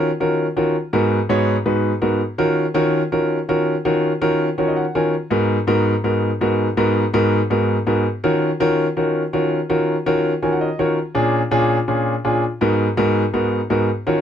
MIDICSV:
0, 0, Header, 1, 2, 480
1, 0, Start_track
1, 0, Key_signature, -6, "minor"
1, 0, Tempo, 364964
1, 981, Time_signature, 4, 2, 24, 8
1, 18689, End_track
2, 0, Start_track
2, 0, Title_t, "Grand piano"
2, 0, Program_c, 0, 0
2, 267, Note_on_c, 0, 51, 78
2, 267, Note_on_c, 0, 66, 74
2, 271, Note_on_c, 0, 61, 77
2, 271, Note_on_c, 0, 65, 76
2, 272, Note_on_c, 0, 70, 94
2, 600, Note_off_c, 0, 51, 0
2, 600, Note_off_c, 0, 66, 0
2, 602, Note_off_c, 0, 61, 0
2, 602, Note_off_c, 0, 65, 0
2, 602, Note_off_c, 0, 70, 0
2, 743, Note_on_c, 0, 51, 88
2, 743, Note_on_c, 0, 61, 73
2, 745, Note_on_c, 0, 65, 77
2, 746, Note_on_c, 0, 70, 92
2, 747, Note_on_c, 0, 66, 82
2, 982, Note_off_c, 0, 51, 0
2, 982, Note_off_c, 0, 61, 0
2, 983, Note_off_c, 0, 65, 0
2, 984, Note_off_c, 0, 66, 0
2, 984, Note_off_c, 0, 70, 0
2, 1223, Note_on_c, 0, 44, 90
2, 1224, Note_on_c, 0, 70, 102
2, 1225, Note_on_c, 0, 63, 82
2, 1225, Note_on_c, 0, 66, 92
2, 1228, Note_on_c, 0, 59, 86
2, 1559, Note_off_c, 0, 44, 0
2, 1559, Note_off_c, 0, 63, 0
2, 1559, Note_off_c, 0, 66, 0
2, 1559, Note_off_c, 0, 70, 0
2, 1561, Note_off_c, 0, 59, 0
2, 1701, Note_on_c, 0, 44, 100
2, 1701, Note_on_c, 0, 59, 95
2, 1703, Note_on_c, 0, 63, 91
2, 1705, Note_on_c, 0, 66, 91
2, 1706, Note_on_c, 0, 73, 104
2, 2038, Note_off_c, 0, 44, 0
2, 2038, Note_off_c, 0, 59, 0
2, 2039, Note_off_c, 0, 63, 0
2, 2040, Note_off_c, 0, 66, 0
2, 2040, Note_off_c, 0, 73, 0
2, 2177, Note_on_c, 0, 44, 83
2, 2178, Note_on_c, 0, 59, 77
2, 2179, Note_on_c, 0, 66, 78
2, 2180, Note_on_c, 0, 71, 91
2, 2182, Note_on_c, 0, 63, 78
2, 2516, Note_off_c, 0, 44, 0
2, 2517, Note_off_c, 0, 59, 0
2, 2517, Note_off_c, 0, 66, 0
2, 2518, Note_off_c, 0, 63, 0
2, 2518, Note_off_c, 0, 71, 0
2, 2651, Note_on_c, 0, 59, 83
2, 2652, Note_on_c, 0, 70, 91
2, 2653, Note_on_c, 0, 66, 84
2, 2654, Note_on_c, 0, 44, 79
2, 2654, Note_on_c, 0, 63, 73
2, 2897, Note_off_c, 0, 59, 0
2, 2898, Note_off_c, 0, 66, 0
2, 2898, Note_off_c, 0, 70, 0
2, 2899, Note_off_c, 0, 44, 0
2, 2899, Note_off_c, 0, 63, 0
2, 3134, Note_on_c, 0, 51, 98
2, 3134, Note_on_c, 0, 61, 82
2, 3135, Note_on_c, 0, 65, 88
2, 3137, Note_on_c, 0, 66, 85
2, 3137, Note_on_c, 0, 70, 104
2, 3475, Note_off_c, 0, 51, 0
2, 3476, Note_off_c, 0, 61, 0
2, 3476, Note_off_c, 0, 65, 0
2, 3477, Note_off_c, 0, 66, 0
2, 3477, Note_off_c, 0, 70, 0
2, 3607, Note_on_c, 0, 61, 94
2, 3609, Note_on_c, 0, 51, 107
2, 3612, Note_on_c, 0, 70, 107
2, 3613, Note_on_c, 0, 65, 85
2, 3613, Note_on_c, 0, 66, 91
2, 3953, Note_off_c, 0, 51, 0
2, 3953, Note_off_c, 0, 61, 0
2, 3955, Note_off_c, 0, 65, 0
2, 3955, Note_off_c, 0, 66, 0
2, 3955, Note_off_c, 0, 70, 0
2, 4104, Note_on_c, 0, 66, 74
2, 4105, Note_on_c, 0, 51, 82
2, 4105, Note_on_c, 0, 61, 77
2, 4106, Note_on_c, 0, 65, 75
2, 4106, Note_on_c, 0, 70, 94
2, 4441, Note_off_c, 0, 66, 0
2, 4442, Note_off_c, 0, 51, 0
2, 4442, Note_off_c, 0, 61, 0
2, 4442, Note_off_c, 0, 65, 0
2, 4442, Note_off_c, 0, 70, 0
2, 4585, Note_on_c, 0, 61, 84
2, 4587, Note_on_c, 0, 51, 82
2, 4588, Note_on_c, 0, 66, 86
2, 4589, Note_on_c, 0, 65, 79
2, 4590, Note_on_c, 0, 70, 97
2, 4922, Note_off_c, 0, 61, 0
2, 4923, Note_off_c, 0, 51, 0
2, 4923, Note_off_c, 0, 66, 0
2, 4924, Note_off_c, 0, 65, 0
2, 4925, Note_off_c, 0, 70, 0
2, 5064, Note_on_c, 0, 66, 86
2, 5065, Note_on_c, 0, 70, 101
2, 5066, Note_on_c, 0, 51, 99
2, 5066, Note_on_c, 0, 61, 80
2, 5066, Note_on_c, 0, 65, 92
2, 5402, Note_off_c, 0, 66, 0
2, 5402, Note_off_c, 0, 70, 0
2, 5403, Note_off_c, 0, 51, 0
2, 5403, Note_off_c, 0, 61, 0
2, 5403, Note_off_c, 0, 65, 0
2, 5542, Note_on_c, 0, 65, 85
2, 5544, Note_on_c, 0, 51, 95
2, 5545, Note_on_c, 0, 61, 83
2, 5545, Note_on_c, 0, 66, 81
2, 5545, Note_on_c, 0, 70, 110
2, 5881, Note_off_c, 0, 65, 0
2, 5882, Note_off_c, 0, 51, 0
2, 5882, Note_off_c, 0, 61, 0
2, 5882, Note_off_c, 0, 70, 0
2, 5883, Note_off_c, 0, 66, 0
2, 6021, Note_on_c, 0, 51, 84
2, 6022, Note_on_c, 0, 66, 75
2, 6023, Note_on_c, 0, 61, 80
2, 6023, Note_on_c, 0, 65, 71
2, 6024, Note_on_c, 0, 73, 68
2, 6025, Note_on_c, 0, 70, 85
2, 6138, Note_off_c, 0, 73, 0
2, 6157, Note_on_c, 0, 75, 68
2, 6265, Note_off_c, 0, 75, 0
2, 6266, Note_on_c, 0, 78, 68
2, 6361, Note_off_c, 0, 51, 0
2, 6362, Note_off_c, 0, 61, 0
2, 6362, Note_off_c, 0, 65, 0
2, 6362, Note_off_c, 0, 66, 0
2, 6363, Note_off_c, 0, 70, 0
2, 6491, Note_off_c, 0, 78, 0
2, 6512, Note_on_c, 0, 51, 87
2, 6512, Note_on_c, 0, 61, 82
2, 6512, Note_on_c, 0, 65, 79
2, 6512, Note_on_c, 0, 70, 94
2, 6513, Note_on_c, 0, 66, 70
2, 6515, Note_on_c, 0, 80, 74
2, 6736, Note_off_c, 0, 80, 0
2, 6751, Note_off_c, 0, 51, 0
2, 6751, Note_off_c, 0, 61, 0
2, 6751, Note_off_c, 0, 65, 0
2, 6751, Note_off_c, 0, 66, 0
2, 6751, Note_off_c, 0, 70, 0
2, 6976, Note_on_c, 0, 63, 83
2, 6977, Note_on_c, 0, 44, 94
2, 6979, Note_on_c, 0, 59, 87
2, 6981, Note_on_c, 0, 66, 77
2, 6982, Note_on_c, 0, 70, 98
2, 7319, Note_off_c, 0, 63, 0
2, 7320, Note_off_c, 0, 44, 0
2, 7320, Note_off_c, 0, 59, 0
2, 7322, Note_off_c, 0, 66, 0
2, 7322, Note_off_c, 0, 70, 0
2, 7460, Note_on_c, 0, 44, 97
2, 7461, Note_on_c, 0, 66, 92
2, 7464, Note_on_c, 0, 59, 85
2, 7465, Note_on_c, 0, 63, 88
2, 7465, Note_on_c, 0, 70, 110
2, 7801, Note_off_c, 0, 44, 0
2, 7802, Note_off_c, 0, 66, 0
2, 7803, Note_off_c, 0, 59, 0
2, 7804, Note_off_c, 0, 63, 0
2, 7804, Note_off_c, 0, 70, 0
2, 7942, Note_on_c, 0, 44, 79
2, 7942, Note_on_c, 0, 59, 74
2, 7946, Note_on_c, 0, 63, 72
2, 7946, Note_on_c, 0, 66, 71
2, 7948, Note_on_c, 0, 70, 94
2, 8283, Note_off_c, 0, 44, 0
2, 8283, Note_off_c, 0, 59, 0
2, 8284, Note_off_c, 0, 63, 0
2, 8285, Note_off_c, 0, 66, 0
2, 8286, Note_off_c, 0, 70, 0
2, 8429, Note_on_c, 0, 44, 85
2, 8433, Note_on_c, 0, 59, 78
2, 8433, Note_on_c, 0, 63, 80
2, 8433, Note_on_c, 0, 70, 95
2, 8436, Note_on_c, 0, 66, 80
2, 8766, Note_off_c, 0, 44, 0
2, 8768, Note_off_c, 0, 59, 0
2, 8768, Note_off_c, 0, 63, 0
2, 8768, Note_off_c, 0, 70, 0
2, 8770, Note_off_c, 0, 66, 0
2, 8906, Note_on_c, 0, 44, 102
2, 8906, Note_on_c, 0, 63, 81
2, 8907, Note_on_c, 0, 59, 91
2, 8908, Note_on_c, 0, 66, 87
2, 8908, Note_on_c, 0, 70, 105
2, 9245, Note_off_c, 0, 44, 0
2, 9245, Note_off_c, 0, 59, 0
2, 9245, Note_off_c, 0, 63, 0
2, 9246, Note_off_c, 0, 66, 0
2, 9246, Note_off_c, 0, 70, 0
2, 9383, Note_on_c, 0, 66, 92
2, 9387, Note_on_c, 0, 44, 101
2, 9387, Note_on_c, 0, 59, 88
2, 9387, Note_on_c, 0, 63, 90
2, 9389, Note_on_c, 0, 70, 115
2, 9723, Note_off_c, 0, 66, 0
2, 9725, Note_off_c, 0, 59, 0
2, 9725, Note_off_c, 0, 63, 0
2, 9726, Note_off_c, 0, 44, 0
2, 9726, Note_off_c, 0, 70, 0
2, 9867, Note_on_c, 0, 63, 81
2, 9869, Note_on_c, 0, 44, 88
2, 9869, Note_on_c, 0, 66, 83
2, 9873, Note_on_c, 0, 59, 83
2, 9873, Note_on_c, 0, 70, 94
2, 10205, Note_off_c, 0, 63, 0
2, 10206, Note_off_c, 0, 44, 0
2, 10207, Note_off_c, 0, 66, 0
2, 10208, Note_off_c, 0, 59, 0
2, 10208, Note_off_c, 0, 70, 0
2, 10343, Note_on_c, 0, 59, 81
2, 10346, Note_on_c, 0, 63, 75
2, 10348, Note_on_c, 0, 66, 83
2, 10349, Note_on_c, 0, 44, 87
2, 10351, Note_on_c, 0, 70, 96
2, 10587, Note_off_c, 0, 59, 0
2, 10589, Note_off_c, 0, 63, 0
2, 10590, Note_off_c, 0, 44, 0
2, 10590, Note_off_c, 0, 66, 0
2, 10591, Note_off_c, 0, 70, 0
2, 10833, Note_on_c, 0, 70, 101
2, 10834, Note_on_c, 0, 65, 85
2, 10835, Note_on_c, 0, 61, 89
2, 10835, Note_on_c, 0, 66, 86
2, 10836, Note_on_c, 0, 51, 104
2, 11168, Note_off_c, 0, 70, 0
2, 11169, Note_off_c, 0, 51, 0
2, 11169, Note_off_c, 0, 61, 0
2, 11169, Note_off_c, 0, 65, 0
2, 11169, Note_off_c, 0, 66, 0
2, 11313, Note_on_c, 0, 51, 107
2, 11313, Note_on_c, 0, 61, 92
2, 11315, Note_on_c, 0, 65, 95
2, 11315, Note_on_c, 0, 66, 94
2, 11317, Note_on_c, 0, 70, 117
2, 11648, Note_off_c, 0, 51, 0
2, 11648, Note_off_c, 0, 61, 0
2, 11649, Note_off_c, 0, 65, 0
2, 11649, Note_off_c, 0, 66, 0
2, 11650, Note_off_c, 0, 70, 0
2, 11792, Note_on_c, 0, 51, 84
2, 11794, Note_on_c, 0, 61, 76
2, 11794, Note_on_c, 0, 70, 87
2, 11796, Note_on_c, 0, 65, 75
2, 11797, Note_on_c, 0, 66, 78
2, 12127, Note_off_c, 0, 51, 0
2, 12128, Note_off_c, 0, 61, 0
2, 12128, Note_off_c, 0, 70, 0
2, 12129, Note_off_c, 0, 65, 0
2, 12130, Note_off_c, 0, 66, 0
2, 12271, Note_on_c, 0, 61, 78
2, 12273, Note_on_c, 0, 66, 76
2, 12274, Note_on_c, 0, 51, 83
2, 12275, Note_on_c, 0, 65, 82
2, 12275, Note_on_c, 0, 70, 97
2, 12606, Note_off_c, 0, 61, 0
2, 12607, Note_off_c, 0, 66, 0
2, 12608, Note_off_c, 0, 51, 0
2, 12608, Note_off_c, 0, 70, 0
2, 12609, Note_off_c, 0, 65, 0
2, 12750, Note_on_c, 0, 61, 77
2, 12751, Note_on_c, 0, 65, 83
2, 12753, Note_on_c, 0, 66, 86
2, 12754, Note_on_c, 0, 51, 91
2, 12754, Note_on_c, 0, 70, 93
2, 13086, Note_off_c, 0, 61, 0
2, 13086, Note_off_c, 0, 65, 0
2, 13087, Note_off_c, 0, 66, 0
2, 13088, Note_off_c, 0, 51, 0
2, 13088, Note_off_c, 0, 70, 0
2, 13234, Note_on_c, 0, 51, 96
2, 13235, Note_on_c, 0, 61, 91
2, 13236, Note_on_c, 0, 70, 106
2, 13237, Note_on_c, 0, 65, 90
2, 13237, Note_on_c, 0, 66, 91
2, 13567, Note_off_c, 0, 51, 0
2, 13568, Note_off_c, 0, 61, 0
2, 13568, Note_off_c, 0, 70, 0
2, 13569, Note_off_c, 0, 65, 0
2, 13569, Note_off_c, 0, 66, 0
2, 13711, Note_on_c, 0, 51, 86
2, 13711, Note_on_c, 0, 65, 72
2, 13711, Note_on_c, 0, 80, 71
2, 13712, Note_on_c, 0, 61, 75
2, 13713, Note_on_c, 0, 66, 71
2, 13714, Note_on_c, 0, 70, 85
2, 13821, Note_off_c, 0, 80, 0
2, 13841, Note_on_c, 0, 78, 67
2, 13946, Note_off_c, 0, 78, 0
2, 13955, Note_on_c, 0, 75, 72
2, 14045, Note_off_c, 0, 51, 0
2, 14045, Note_off_c, 0, 65, 0
2, 14046, Note_off_c, 0, 61, 0
2, 14046, Note_off_c, 0, 66, 0
2, 14047, Note_off_c, 0, 70, 0
2, 14174, Note_off_c, 0, 75, 0
2, 14192, Note_on_c, 0, 51, 87
2, 14193, Note_on_c, 0, 61, 72
2, 14193, Note_on_c, 0, 65, 76
2, 14193, Note_on_c, 0, 66, 76
2, 14193, Note_on_c, 0, 73, 75
2, 14194, Note_on_c, 0, 70, 90
2, 14413, Note_off_c, 0, 73, 0
2, 14429, Note_off_c, 0, 51, 0
2, 14430, Note_off_c, 0, 61, 0
2, 14430, Note_off_c, 0, 65, 0
2, 14430, Note_off_c, 0, 66, 0
2, 14431, Note_off_c, 0, 70, 0
2, 14658, Note_on_c, 0, 61, 77
2, 14659, Note_on_c, 0, 65, 82
2, 14660, Note_on_c, 0, 62, 92
2, 14663, Note_on_c, 0, 46, 93
2, 14663, Note_on_c, 0, 68, 101
2, 14998, Note_off_c, 0, 61, 0
2, 14998, Note_off_c, 0, 65, 0
2, 14999, Note_off_c, 0, 62, 0
2, 15000, Note_off_c, 0, 46, 0
2, 15000, Note_off_c, 0, 68, 0
2, 15138, Note_on_c, 0, 61, 87
2, 15142, Note_on_c, 0, 46, 99
2, 15142, Note_on_c, 0, 62, 88
2, 15144, Note_on_c, 0, 68, 110
2, 15145, Note_on_c, 0, 65, 90
2, 15478, Note_off_c, 0, 61, 0
2, 15479, Note_off_c, 0, 46, 0
2, 15480, Note_off_c, 0, 62, 0
2, 15480, Note_off_c, 0, 68, 0
2, 15481, Note_off_c, 0, 65, 0
2, 15622, Note_on_c, 0, 46, 83
2, 15622, Note_on_c, 0, 61, 76
2, 15623, Note_on_c, 0, 62, 71
2, 15624, Note_on_c, 0, 68, 85
2, 15627, Note_on_c, 0, 65, 72
2, 15959, Note_off_c, 0, 46, 0
2, 15959, Note_off_c, 0, 61, 0
2, 15959, Note_off_c, 0, 62, 0
2, 15960, Note_off_c, 0, 68, 0
2, 15961, Note_off_c, 0, 65, 0
2, 16104, Note_on_c, 0, 46, 85
2, 16105, Note_on_c, 0, 62, 79
2, 16106, Note_on_c, 0, 68, 87
2, 16107, Note_on_c, 0, 61, 72
2, 16108, Note_on_c, 0, 65, 80
2, 16344, Note_off_c, 0, 46, 0
2, 16344, Note_off_c, 0, 62, 0
2, 16345, Note_off_c, 0, 61, 0
2, 16345, Note_off_c, 0, 68, 0
2, 16346, Note_off_c, 0, 65, 0
2, 16584, Note_on_c, 0, 59, 84
2, 16584, Note_on_c, 0, 66, 88
2, 16587, Note_on_c, 0, 70, 102
2, 16588, Note_on_c, 0, 44, 99
2, 16589, Note_on_c, 0, 63, 86
2, 16919, Note_off_c, 0, 59, 0
2, 16919, Note_off_c, 0, 66, 0
2, 16921, Note_off_c, 0, 44, 0
2, 16921, Note_off_c, 0, 70, 0
2, 16922, Note_off_c, 0, 63, 0
2, 17060, Note_on_c, 0, 59, 85
2, 17061, Note_on_c, 0, 66, 92
2, 17062, Note_on_c, 0, 63, 90
2, 17063, Note_on_c, 0, 44, 97
2, 17063, Note_on_c, 0, 70, 107
2, 17397, Note_off_c, 0, 59, 0
2, 17398, Note_off_c, 0, 44, 0
2, 17398, Note_off_c, 0, 63, 0
2, 17398, Note_off_c, 0, 66, 0
2, 17398, Note_off_c, 0, 70, 0
2, 17538, Note_on_c, 0, 63, 76
2, 17539, Note_on_c, 0, 44, 81
2, 17540, Note_on_c, 0, 59, 82
2, 17540, Note_on_c, 0, 66, 82
2, 17541, Note_on_c, 0, 70, 91
2, 17876, Note_off_c, 0, 44, 0
2, 17876, Note_off_c, 0, 63, 0
2, 17877, Note_off_c, 0, 59, 0
2, 17877, Note_off_c, 0, 66, 0
2, 17877, Note_off_c, 0, 70, 0
2, 18018, Note_on_c, 0, 63, 83
2, 18020, Note_on_c, 0, 44, 85
2, 18021, Note_on_c, 0, 59, 83
2, 18021, Note_on_c, 0, 70, 95
2, 18023, Note_on_c, 0, 66, 88
2, 18260, Note_off_c, 0, 63, 0
2, 18261, Note_off_c, 0, 44, 0
2, 18261, Note_off_c, 0, 59, 0
2, 18261, Note_off_c, 0, 70, 0
2, 18262, Note_off_c, 0, 66, 0
2, 18499, Note_on_c, 0, 61, 93
2, 18501, Note_on_c, 0, 65, 89
2, 18502, Note_on_c, 0, 51, 93
2, 18503, Note_on_c, 0, 70, 96
2, 18504, Note_on_c, 0, 66, 87
2, 18689, Note_off_c, 0, 51, 0
2, 18689, Note_off_c, 0, 61, 0
2, 18689, Note_off_c, 0, 65, 0
2, 18689, Note_off_c, 0, 66, 0
2, 18689, Note_off_c, 0, 70, 0
2, 18689, End_track
0, 0, End_of_file